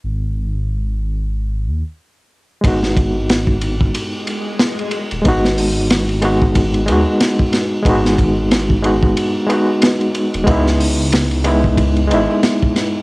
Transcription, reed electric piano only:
X:1
M:4/4
L:1/8
Q:"Swing 16ths" 1/4=92
K:G#m
V:1 name="Reed electric piano"
z8 | [G,B,DF]8 | [G,B,DF]3 [G,B,DF]2 [G,B,DF]3 | [G,B,DF]3 [G,B,DF]2 [G,B,DF]3 |
[G,B,DE]3 [G,B,DE]2 [G,B,DE]3 |]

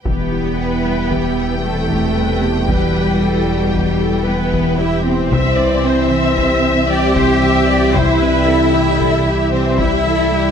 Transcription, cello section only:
X:1
M:5/4
L:1/8
Q:1/4=114
K:Em
V:1 name="Cello section"
B,6 A,4 | G,6 B,2 E C- | C6 G4 | E6 C E3 |]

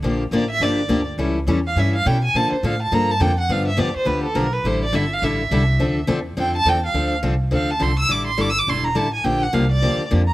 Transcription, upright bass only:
X:1
M:4/4
L:1/8
Q:"Swing" 1/4=208
K:Dm
V:1 name="Upright bass" clef=bass
B,,,2 A,,,2 G,,,2 D,,2 | ^C,,2 E,,2 G,,2 =B,,2 | B,, z A,,2 G,,2 F,,2 | G,,2 F,, z D,,2 =B,,,2 |
A,,,2 G,,,2 A,,,2 C,,2 | D,,2 E,,2 F,,2 E,,2 | D,,2 C,,2 D,,2 C,,2 | A,,,2 G,,,2 E,,,2 A,,,2 |
B,,,2 C,,2 D,,2 F,,2 |]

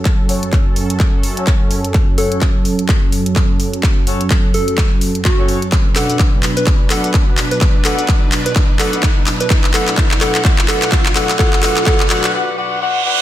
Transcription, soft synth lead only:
X:1
M:4/4
L:1/16
Q:"Swing 16ths" 1/4=127
K:Bdor
V:1 name="Soft synth lead"
z16 | z2 A2 z12 | z6 A3 z3 F3 z | z2 A2 z3 B z2 A2 z3 B |
z2 A2 z3 B z2 A2 z3 B | z2 A2 z2 A2 z2 A2 z2 A2 | A2 A2 A2 A2 z8 |]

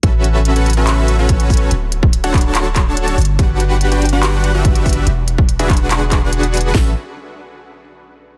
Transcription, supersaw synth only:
X:1
M:4/4
L:1/16
Q:1/4=143
K:A
V:1 name="Supersaw synth"
[CFABe]4- [CFABe] [CFABf] z [CFABe]4 [CFABc]4- [CFABc] | z4 z [DFAcf]2 [DFAca]6- [DFAca] z2 | [DF=GBf]4- [DFGBf] [DFGB=g] z [DFGBf]4 [DFGBe]4- [DFGBe] | z4 z [DFGBe]2 [DFGBf]4 [DFGBf]4- [DFGBf] |
[CFABe]2 z12 z2 |]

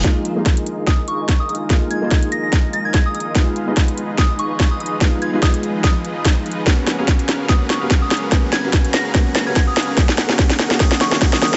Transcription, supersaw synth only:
X:1
M:4/4
L:1/16
Q:"Swing 16ths" 1/4=145
K:Bbphr
V:1 name="Supersaw synth"
[Ff]3 [EFABe]12- [EFABe] | B3 [EFABe]12- [EFABe] | z3 [EFAce]12- [EFAce] | [EFAc]3 [EFAce]12- [EFAce] |
[DBcg]3 [DABcf]4- [DABcf] [DAB]3 [DABcf]4- [DABcf] | [DA]3 [DABcf]4- [DABcf] [DABcg]3 [DABcf]4- [DABcf] | z3 [DABf] z3 [DABf] z3 [DABf] g3 [ABf] |]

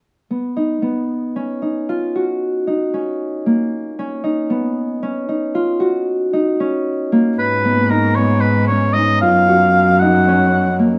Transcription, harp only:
X:1
M:7/8
L:1/8
Q:1/4=114
K:Cblyd
V:1 name="Harp"
z =B, ^D B,2 ^C D | F G2 E D2 B, | z ^C ^D =B,2 C D | F G2 E D2 B, |
z C E C2 D E | F G2 E D2 B, |]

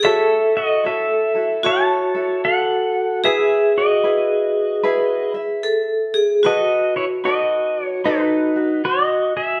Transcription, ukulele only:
X:1
M:4/4
L:1/8
Q:"Swing" 1/4=75
K:E
V:1 name="Ukulele"
[EFAc]2 [EFAc] [EFA] [EFAc] [EFA]3 | [EGB]2 [EGB]2 [EGB] [Ee]3 | [FAB]2 [DFAB]2 [DFAB] F3 |]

